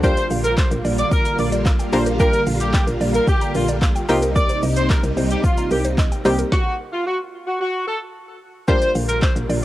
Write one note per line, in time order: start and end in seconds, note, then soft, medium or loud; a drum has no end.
0.00 0.14 D2 medium
0.00 4.05 D3 medium
0.00 0.72 G3 medium
0.00 4.05 G3 medium
0.00 6.48 A#3 medium
0.00 0.72 A#3 medium
0.00 0.72 D4 medium
0.00 4.05 F4 medium
0.00 0.72 F4 medium
0.00 0.72 G4 medium
0.00 0.13 A#4 medium
0.00 0.26 C5 loud
0.00 kick loud
0.00 shaker medium
0.17 0.26 D5 medium
0.17 closed hi-hat medium
0.17 shaker medium
0.30 0.59 A#1 medium
0.30 0.40 F5 medium
0.30 open hi-hat medium
0.30 shaker medium
0.44 0.56 A#4 medium
0.44 closed hi-hat medium
0.44 shaker medium
0.57 0.69 C5 medium
0.57 kick loud
0.57 clap loud
0.57 shaker medium
0.71 0.81 A#1 loud
0.71 0.80 A#4 medium
0.71 closed hi-hat medium
0.71 shaker soft
0.71 shaker medium
0.85 1.04 A#1 loud
0.85 0.94 D5 medium
0.85 open hi-hat medium
0.85 shaker medium
0.98 1.10 D5 medium
0.98 closed hi-hat medium
0.98 shaker medium
1.11 1.34 A#4 loud
1.11 kick loud
1.11 shaker medium
1.25 1.34 A#5 loud
1.25 closed hi-hat medium
1.25 shaker medium
1.38 1.76 A#1 medium
1.38 1.48 A#4 medium
1.38 1.50 D5 medium
1.38 open hi-hat medium
1.38 shaker medium
1.52 1.61 D5 medium
1.52 closed hi-hat medium
1.52 shaker medium
1.66 1.75 F5 medium
1.66 kick loud
1.66 clap loud
1.66 shaker medium
1.79 1.88 G5 medium
1.79 closed hi-hat medium
1.79 shaker soft
1.79 shaker medium
1.93 2.30 A#1 medium
1.93 2.10 G3 medium
1.93 2.10 A#3 medium
1.93 2.10 D4 medium
1.93 2.10 F4 medium
1.93 2.10 A#4 medium
1.93 2.04 C5 medium
1.93 2.02 A#5 medium
1.93 open hi-hat medium
1.93 shaker medium
2.06 2.15 A#4 medium
2.06 closed hi-hat medium
2.06 shaker medium
2.20 2.88 G3 medium
2.20 2.88 A#3 medium
2.20 2.88 D4 medium
2.20 2.88 F4 medium
2.20 2.88 G4 medium
2.20 2.29 A#4 loud
2.20 2.42 A#4 loud
2.20 kick loud
2.20 shaker medium
2.33 2.42 D5 medium
2.33 closed hi-hat medium
2.33 shaker medium
2.46 2.75 A#1 medium
2.46 2.56 F5 medium
2.46 open hi-hat medium
2.46 shaker medium
2.60 2.72 G4 medium
2.60 closed hi-hat medium
2.60 shaker medium
2.74 2.85 G4 medium
2.74 kick loud
2.74 clap loud
2.74 shaker medium
2.87 2.97 A#1 medium
2.87 2.96 A#4 medium
2.87 closed hi-hat medium
2.87 shaker soft
2.87 shaker medium
3.01 3.19 A#1 loud
3.01 3.10 D5 medium
3.01 open hi-hat medium
3.01 shaker medium
3.14 3.26 A#4 medium
3.14 closed hi-hat medium
3.14 shaker medium
3.28 3.51 G4 medium
3.28 kick loud
3.28 shaker medium
3.41 3.50 A#5 loud
3.41 closed hi-hat medium
3.41 shaker medium
3.55 3.92 A#1 medium
3.55 3.66 F4 medium
3.55 3.64 A#4 medium
3.55 open hi-hat medium
3.55 shaker medium
3.68 3.78 D5 medium
3.68 closed hi-hat medium
3.68 shaker medium
3.82 3.91 F5 loud
3.82 kick loud
3.82 clap loud
3.82 shaker medium
3.96 4.05 G5 medium
3.96 closed hi-hat medium
3.96 shaker soft
3.96 shaker medium
4.09 4.46 C2 loud
4.09 6.50 C3 medium
4.09 4.95 G3 medium
4.09 6.50 G3 medium
4.09 4.95 A#3 medium
4.09 4.95 C4 medium
4.09 6.50 D#4 medium
4.09 4.95 D#4 medium
4.09 4.20 F4 medium
4.09 4.96 G4 medium
4.09 4.18 A#5 medium
4.09 open hi-hat medium
4.09 shaker medium
4.22 4.31 A#4 loud
4.22 closed hi-hat medium
4.22 shaker medium
4.36 4.45 A#4 loud
4.36 4.59 D5 loud
4.36 kick loud
4.36 shaker medium
4.49 4.59 C5 medium
4.49 closed hi-hat medium
4.49 shaker medium
4.62 4.91 C2 medium
4.62 4.72 D#5 medium
4.62 open hi-hat medium
4.62 shaker medium
4.76 4.88 C5 medium
4.76 closed hi-hat medium
4.76 shaker medium
4.90 5.01 A#4 medium
4.90 kick loud
4.90 clap loud
4.90 shaker medium
5.03 5.13 C2 loud
5.03 5.13 A#4 medium
5.03 closed hi-hat medium
5.03 shaker soft
5.03 shaker medium
5.17 5.36 C2 loud
5.17 5.26 C5 medium
5.17 open hi-hat medium
5.17 shaker medium
5.30 5.42 G4 medium
5.30 closed hi-hat medium
5.30 shaker medium
5.44 5.67 F4 medium
5.44 kick loud
5.44 shaker medium
5.57 5.67 A#5 loud
5.57 closed hi-hat medium
5.57 shaker medium
5.71 6.09 C2 medium
5.71 5.82 G4 medium
5.71 5.80 A#4 medium
5.71 open hi-hat medium
5.71 shaker medium
5.84 5.94 C5 medium
5.84 closed hi-hat medium
5.84 shaker medium
5.98 6.07 D#5 loud
5.98 kick loud
5.98 clap loud
5.98 shaker medium
6.12 6.21 G5 medium
6.12 closed hi-hat medium
6.12 shaker soft
6.12 shaker medium
6.25 6.44 C2 loud
6.25 6.42 G3 medium
6.25 6.42 A#3 medium
6.25 6.42 C4 medium
6.25 6.42 D#4 medium
6.25 6.37 G4 medium
6.25 6.42 G4 medium
6.25 6.34 A#5 medium
6.25 open hi-hat medium
6.25 shaker medium
6.39 6.48 A#4 loud
6.39 closed hi-hat medium
6.39 shaker medium
6.52 6.75 F#4 loud
6.52 kick loud
6.52 snare loud
6.93 7.04 F4 medium
7.06 7.18 F#4 medium
7.47 7.58 F#4 medium
7.60 7.83 F#4 medium
7.87 7.99 A4 medium
8.68 9.65 D3 medium
8.68 9.37 G3 medium
8.68 9.65 G3 medium
8.68 9.37 A#3 medium
8.68 9.65 A#3 medium
8.68 9.37 D4 medium
8.68 9.65 F4 medium
8.68 9.37 F4 medium
8.68 9.37 G4 medium
8.68 8.77 A#4 medium
8.68 8.91 C5 loud
8.68 kick loud
8.68 shaker medium
8.82 8.91 D5 medium
8.82 closed hi-hat medium
8.82 shaker medium
8.95 9.23 A#1 medium
8.95 9.04 F5 medium
8.95 open hi-hat medium
8.95 shaker medium
9.09 9.20 A#4 medium
9.09 closed hi-hat medium
9.09 shaker medium
9.22 9.34 C5 medium
9.22 kick loud
9.22 clap loud
9.22 shaker medium
9.36 9.45 A#1 medium
9.36 9.45 A#4 medium
9.36 closed hi-hat medium
9.36 shaker medium
9.49 9.65 A#1 loud
9.49 9.59 D5 loud
9.49 open hi-hat medium
9.49 shaker soft